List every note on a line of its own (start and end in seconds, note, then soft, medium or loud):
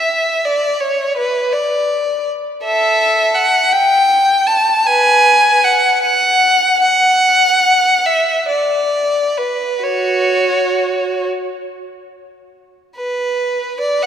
0.00 0.44 E5 medium
0.45 0.82 D5 medium
0.81 1.18 C#5 medium
1.17 1.54 B4 medium
1.53 2.28 D5 medium
2.64 3.33 A4 medium
2.64 3.33 E5 medium
3.35 3.73 F#5 medium
3.73 4.48 G5 medium
4.47 4.87 A5 medium
4.87 5.60 B4 medium
4.87 5.64 G#5 medium
5.64 6.01 F#5 medium
6.02 6.80 F#5 medium
6.82 8.04 F#5 medium
8.06 8.49 E5 medium
8.48 9.36 D5 medium
9.37 9.85 B4 medium
9.83 11.25 F#4 soft
9.83 11.29 C#5 medium
12.97 13.76 B4 medium
13.80 14.01 D5 medium
14.03 14.06 F#5 medium